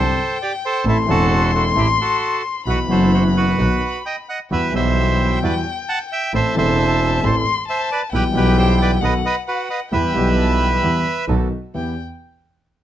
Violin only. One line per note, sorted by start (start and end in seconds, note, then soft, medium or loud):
0.00 0.86 G5 loud
0.85 2.66 C6 loud
2.66 3.54 B5 loud
3.59 4.24 B5 medium
4.51 6.34 G5 loud
6.33 7.25 A5 loud
7.24 7.67 C6 loud
7.68 8.09 A5 loud
8.12 9.03 G5 loud
9.01 9.46 F#5 loud
9.47 9.89 F#5 medium
9.92 10.34 G5 medium
10.38 10.58 A5 medium
10.60 10.81 G5 medium
11.75 11.96 G5 medium